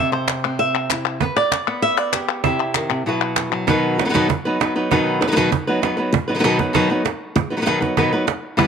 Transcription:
Already playing: C3 E5
0.12 C5
0.28 cajon slap, clap
0.44 C4, clap
0.59 E5
0.74 cajon slap
0.90 E4, cajon slap, clap
1.05 clap
1.21 B3 B4, cajon bass
1.36 D5
1.52 cajon slap, clap
1.67 B3, clap
1.82 E5
1.97 D5
2.13 G4, cajon slap, clap
2.44 C3 C4 E4 G4 E5, cajon bass
2.74 D#3, cajon slap, clap
2.90 C3
3.06 B2 F#3 E4 F#4 B4, cajon slap
3.21 cajon slap
3.36 cajon slap, clap
3.52 F#3
3.67 B2 D#3 F#3 B3 D#4 B4, cajon bass
3.84 cajon slap
3.98 F#3 B3 D#4 B4, cajon slap
4.05 D#3 F#3 B3 D#4 B4
4.09 D#3 F#3 B3 D#4 B4
4.14 B2 D#3 F#3 B3 D#4 B4, cajon bass
4.29 muted nylon-string guitar stroke, cajon bass
4.45 F#3 B3 D#4 B4, cajon slap
4.60 F#3 B3 D#4 B4, cajon slap
4.76 F#3 B3 D#4 B4
4.91 B2 D#3 F#3 B3 D#4 B4, cajon bass
5.08 cajon slap
5.21 F#3 B3 D#4 B4, cajon slap
5.28 D#3 F#3 B3 D#4 B4
5.32 D#3 F#3 B3 D#4 B4
5.36 B2 D#3 F#3 B3 D#4 B4, cajon bass
5.52 muted nylon-string guitar stroke, cajon bass
5.67 F#3 B3 D#4 B4, cajon slap
5.82 F#3 B3 D#4 B4, cajon slap
5.97 F#3 B3 D#4 B4
6.13 muted nylon-string guitar stroke, cajon bass
6.28 F#3 B3 D#4 B4
6.35 D#3 F#3 B3 D#4 B4
6.39 D#3 F#3 B3 D#4 B4
6.44 B2 D#3 F#3 B3 D#4 B4, cajon slap
6.59 F#3 B3 D#4 B4, cajon bass
6.73 B2 D#3 F#3 B3 D#4 B4, cajon bass
6.90 F#3 B3 D#4 B4, cajon slap
7.05 muted nylon-string guitar stroke, cajon slap
7.36 muted nylon-string guitar stroke, cajon bass
7.50 F#3 B3 D#4 B4
7.57 D#3 F#3 B3 D#4 B4
7.61 D#3 F#3 B3 D#4 B4
7.66 B2 D#3 F#3 B3 D#4 B4, cajon slap
7.81 F#3 B3 D#4 B4, cajon bass
7.97 B2 D#3 F#3 B3 D#4 B4, cajon bass
8.13 F#3 B3 D#4 B4
8.27 muted nylon-string guitar stroke, cajon slap
8.57 E3 G3 B3 E4 B4, cajon bass

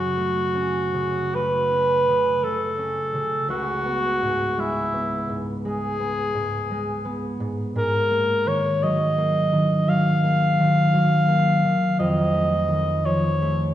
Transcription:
Already playing: F#2 C#3 C#4 F#4
0.17 A3
0.55 C#4
0.94 C#3
1.35 A3 B4
1.71 C#4
2.08 C#3
2.43 A3 A4
2.78 C#4
3.14 C#3
3.49 C#2 F#4
3.85 B3
4.23 G#2
4.57 G#3 E4
4.94 B3
5.29 G#2
5.65 G#3 G#4
6.00 B3
6.35 G#2
6.71 G#3
7.05 B3
7.40 G#2
7.75 G#2 A#4
8.11 A#3
8.46 D#3 C#5
8.83 F#3 D#5
9.18 A#3
9.52 D#3
9.88 F#3 F5
10.24 A#3
10.59 D#3
10.94 F#3
11.28 A#3
11.65 D#3
11.99 F2 D#5
12.34 A3
12.68 D#3
13.05 F3 C#5
13.42 A3

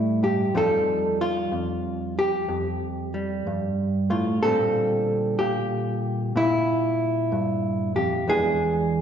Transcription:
Already playing: A2 E3 G3 C4 E4
0.23 G2 G4
0.54 F2 F3 G3 D#4 A4
1.21 F4
1.51 F2
2.19 G4
2.48 F2
3.14 G3
3.47 G2
4.10 A2 F4
4.43 A#2 D3 G3 C4 A4
5.39 A#2 G4
6.36 A#2 E4
7.32 G2
7.96 F2 G4
8.28 E2 E3 G#3 D4 G#4

